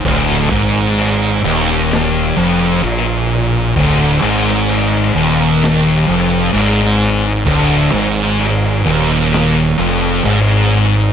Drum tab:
CC |x-x-x-x-|x-x-x-x-|x-x-x-x-|
SD |----o---|----o---|----o---|
BD |oo------|o-------|o-------|